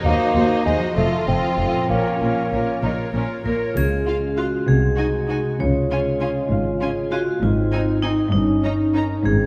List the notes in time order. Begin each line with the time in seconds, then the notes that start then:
Already playing: D#3 A#3 D#4 F#4 A#4
0.01 D#2 C5
0.05 D#2 A#3 F#4 C5 D#5
0.35 D#2 F#4 C5 D#5
0.65 D#2 G#3 F#4 C5 D#5
0.79 F3
0.83 D#4
0.88 F4
0.92 A4
0.96 F1 F2 A3 F4 A4 D#5
1.27 F1 F2 C4 F4 A4 D#5
1.58 F1 F2 F4 A4 D#5
1.72 A#2
1.77 C#4
1.81 F4
1.86 A#2 A#4 C#5
1.90 A#1 A#3 C#4 F4 A#4
2.20 A#1 A#2 F4 A#4 C#5
2.51 A#1 A#2 F4 A#4 C#5
2.82 A#1 A#2 D#4 F4 A#4 C#5
3.13 A#1 A#2 C#4 F4 A#4 C#5
3.44 A#1 A#2 A#3 F4 A#4 C#5
3.76 C#2 C#3 G#3 F4 G#4, triangle
4.06 C#4 F4 F5
4.36 F4 F#4 G#4 F5
4.67 C2 C3 F#4 G#4
4.97 D#4 F#4 G#5
5.29 D#4 F#4 G#4 G#5
5.60 C#2 C#3 F4 C#5
5.90 C#4 F4 G#5
6.21 C#4 F4 G#4 G#5
6.51 G#1 G#2 F5
6.81 C#4 F4 G#4 G#5
7.11 C#4 F4 F#4 G#5
7.41 G#1 G#2 C4 D#4 F4
7.72 C4 D#4 G#5
8.02 C4 D#4 G#4 G#5
8.32 G1 G2 C#4 D#4
8.63 C#4 D#4 A#5
8.94 C#4 D#4 A#4 A#5
9.25 G#1 G#2 C4 G#4